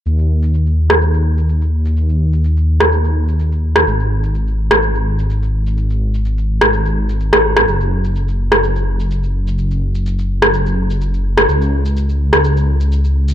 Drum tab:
SH |xx-xxx-xxx-xxx-x|xx-xxx-xxx-xxx-x|xx-xxx-xxx-xxx-x|xx-xxx-xxx-xxx-x|
SD |-------r--------|-------r-------r|-------r--------|-------r-----r-r|

SH |xx-xxx-xxx-xxx-x|xx-xxx-xxx-xxx-x|xx-xxx-xxx-xxx-x|
SD |-------r--------|-------r-------r|-------r--------|